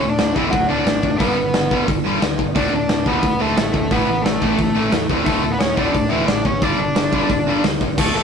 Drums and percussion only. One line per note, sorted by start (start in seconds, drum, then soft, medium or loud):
0.18 snare loud
0.18 open hi-hat soft
0.36 kick medium
0.53 kick loud
0.53 open hi-hat soft
0.86 snare loud
0.86 open hi-hat medium
1.03 kick medium
1.20 kick loud
1.20 open hi-hat medium
1.54 snare loud
1.54 open hi-hat medium
1.71 kick medium
1.88 kick loud
1.88 open hi-hat medium
2.22 snare loud
2.22 open hi-hat medium
2.39 kick medium
2.56 kick loud
2.56 open hi-hat medium
2.89 snare loud
2.89 open hi-hat soft
3.06 kick medium
3.23 kick loud
3.23 open hi-hat medium
3.57 snare loud
3.57 open hi-hat medium
3.74 kick medium
3.91 kick loud
3.91 open hi-hat medium
4.26 snare loud
4.26 open hi-hat soft
4.42 kick medium
4.58 kick loud
4.58 open hi-hat medium
4.92 snare loud
4.92 open hi-hat medium
5.10 kick medium
5.26 kick loud
5.26 open hi-hat medium
5.60 snare loud
5.60 open hi-hat medium
5.77 kick medium
5.95 kick loud
5.95 open hi-hat medium
6.28 snare loud
6.28 open hi-hat medium
6.45 kick medium
6.62 kick loud
6.62 open hi-hat medium
6.96 snare loud
6.96 open hi-hat soft
7.13 kick medium
7.29 kick loud
7.29 open hi-hat medium
7.64 snare loud
7.64 open hi-hat medium
7.81 kick medium
7.98 kick loud
7.98 crash loud
7.98 crash medium